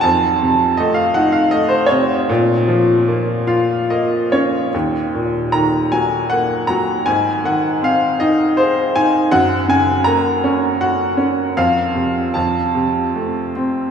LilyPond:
<<
  \new Staff \with { instrumentName = "Upright piano" } { \time 3/4 \key ees \dorian \tempo 4 = 79 a''4 ees''16 f''16 ges''16 f''16 ees''16 c''16 des''8~ | des''2~ des''8 r8 | r4 bes''8 aes''8 ges''8 bes''8 | aes''8 ges''8 f''8 ees''8 c''8 aes''8 |
ges''8 aes''8 bes''4 ges''4 | f''4 a''4. r8 | }
  \new Staff \with { instrumentName = "Upright piano" } { \time 3/4 \key ees \dorian f,8 c8 a8 ees'8 a8 c8 | bes,8 f8 bes8 <f' f''>8 <bes ees''>8 <des' des''>8 | ees,8 bes,8 ees8 ges8 bes8 ges8 | aes,8 ees8 c'8 ees'8 aes'8 ees'8 |
ges,8 des8 bes8 des'8 ges'8 des'8 | f,8 c8 f,8 c8 a8 c'8 | }
>>